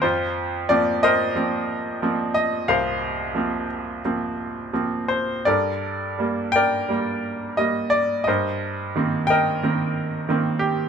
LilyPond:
<<
  \new Staff \with { instrumentName = "Grand piano" } { \time 4/4 \key f \mixolydian \tempo 4 = 89 << { c''4 d''8 ees''2 ees''8 | f''4. r2 c''8 | d''4. g''4. ees''8 d''8 | ees''4. g''2 g'8 | } \\ { f'4. <bes' c''>2 r8 | <bes' c''>2 r2 | <a' bes'>4. <bes' d''>2 r8 | <bes' c''>4. <bes' ees''>2 r8 | } >> }
  \new Staff \with { instrumentName = "Grand piano" } { \time 4/4 \key f \mixolydian f,4 <f bes c'>4 <f bes c'>4 <f bes c'>4 | c,4 <f bes c'>4 <f bes c'>4 <f bes c'>4 | g,4 <g bes>4 <g bes>4 <g bes>4 | g,4 <ees bes c'>4 <ees bes c'>4 <ees bes c'>4 | }
>>